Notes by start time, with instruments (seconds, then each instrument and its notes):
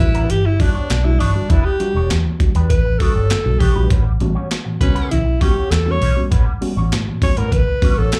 Already playing: alto saxophone E4
0.00 fingered electric bass A1, tine electric piano G3 D4 F#4, tenor saxophone B4, kick, closed hi-hat
0.14 clean electric guitar B3 D4 G4 B4, closed hi-hat
0.30 fingered electric bass G1, tine electric piano E3, alto saxophone G4, muted clean electric guitar stroke, closed hi-hat
0.45 alto saxophone E4, muted clean electric guitar stroke
0.59 tine electric piano G3 D4 F#4, clean electric guitar B3 D4 G4 C#5, alto saxophone D4, kick, open hi-hat
0.75 clean electric guitar B3 D4 G4 C#5, tine electric piano D4 F#4
0.90 fingered electric bass B1, muted clean electric guitar stroke, snare, clap, closed hi-hat
1.04 tine electric piano G3 D4 F#4, alto saxophone E4, muted clean electric guitar stroke
1.19 fingered electric bass G1, tine electric piano E3, clean electric guitar B3 D4 G4 C#5, alto saxophone D4, open hi-hat
1.35 tine electric piano G3 D4 F#4, muted clean electric guitar stroke
1.49 fingered electric bass E1, tine electric piano E3, clean electric guitar B3 D4 G4 B4, alto saxophone E4, kick, closed hi-hat
1.64 alto saxophone G4, muted clean electric guitar stroke
1.80 tine electric piano G3 D4 F#4, muted clean electric guitar stroke, closed hi-hat
1.94 fingered electric bass E1, clean electric guitar B3 D4 G4 C#5, tine electric piano D4 F#4
2.10 fingered electric bass E2, tine electric piano D4 F#4, muted clean electric guitar stroke, snare, clap, closed hi-hat
2.25 tine electric piano E3, muted clean electric guitar stroke
2.40 tine electric piano G3 D4 F#4, muted fingered electric bass stroke, kick, closed hi-hat
2.55 fingered electric bass E2, clean electric guitar B3 D4 G4 B4, closed hi-hat
2.70 fingered electric bass A1, tine electric piano E3, alto saxophone B4, muted clean electric guitar stroke, kick, closed hi-hat
2.85 muted clean electric guitar stroke
2.98 tine electric piano G3 D4 F#4, clean electric guitar B3 D4 G4 C#5, alto saxophone A4, kick, open hi-hat
3.15 fingered electric bass G1, clean electric guitar B3 D4 G4 C#5, tine electric piano D4 F#4
3.30 muted clean electric guitar stroke, snare, clap, closed hi-hat
3.45 fingered electric bass B1, tine electric piano G3 D4 F#4, muted clean electric guitar stroke
3.59 fingered electric bass B1, tine electric piano E3, clean electric guitar B3 D4 G4 C#5, alto saxophone G4, kick, open hi-hat
3.75 fingered electric bass A#1, tine electric piano G3 D4 F#4, clean electric guitar B3 D4 G4 B4
3.90 fingered electric bass A1, tine electric piano A2 E3, clean electric guitar G3 C#4 F#4 B4, kick, closed hi-hat
4.05 muted clean electric guitar stroke
4.20 fingered electric bass A1, tine electric piano G3 B3 C#4 F#4, muted clean electric guitar stroke, closed hi-hat
4.35 clean electric guitar G3 C#4 F#4 C#5, tine electric piano C#4 F#4
4.50 tine electric piano C#4 F#4, muted clean electric guitar stroke, snare, clap, closed hi-hat
4.65 tine electric piano A2 E3, muted clean electric guitar stroke
4.81 fingered electric bass C#2, tine electric piano G3 B3 C#4 F#4, alto saxophone C#4, tenor saxophone B4, kick, closed hi-hat
4.94 clean electric guitar G3 C#4 F#4 B4, closed hi-hat
5.10 fingered electric bass B1, tine electric piano A2 E3, alto saxophone E4, muted clean electric guitar stroke, closed hi-hat
5.25 muted clean electric guitar stroke
5.40 clean electric guitar G3 C#4 F#4 C#5, tine electric piano G3 B3 C#4 F#4, alto saxophone G4, kick, open hi-hat
5.55 clean electric guitar G3 C#4 F#4 C#5, tine electric piano C#4 F#4
5.70 fingered electric bass E2, alto saxophone A4, muted clean electric guitar stroke, snare, clap, closed hi-hat
5.86 tine electric piano G3 B3 C#4 F#4, muted clean electric guitar stroke
5.91 alto saxophone C#5
6.01 fingered electric bass B1, tine electric piano A2 E3, clean electric guitar G3 C#4 F#4 C#5, open hi-hat
6.16 tine electric piano G3 B3 C#4 F#4, muted clean electric guitar stroke
6.31 fingered electric bass A1, tine electric piano A2 E3, clean electric guitar G3 C#4 F#4 B4, kick, closed hi-hat
6.46 muted clean electric guitar stroke
6.61 tine electric piano G3 B3 C#4 F#4, muted clean electric guitar stroke, open hi-hat
6.76 fingered electric bass A1, clean electric guitar G3 C#4 F#4 C#5, tine electric piano C#4 F#4
6.92 fingered electric bass A2, tine electric piano C#4 F#4, muted clean electric guitar stroke, snare, clap, closed hi-hat
7.07 tine electric piano A2 E3, muted clean electric guitar stroke
7.22 tine electric piano G3 B3 C#4 F#4, alto saxophone C#5, muted fingered electric bass stroke, kick, open hi-hat
7.37 fingered electric bass A2, clean electric guitar G3 C#4 F#4 B4, alto saxophone A#4, closed hi-hat
7.52 fingered electric bass C#2, tine electric piano A2 E3, alto saxophone B4, kick, closed hi-hat
7.68 muted clean electric guitar stroke
7.82 tine electric piano G3 B3 C#4 F#4, clean electric guitar G3 C#4 F#4 C#5, kick, open hi-hat
7.97 fingered electric bass A1, clean electric guitar G3 C#4 F#4 C#5, tine electric piano C#4 F#4, alto saxophone A4
8.12 tine electric piano C#4 F#4, snare, clap, closed hi-hat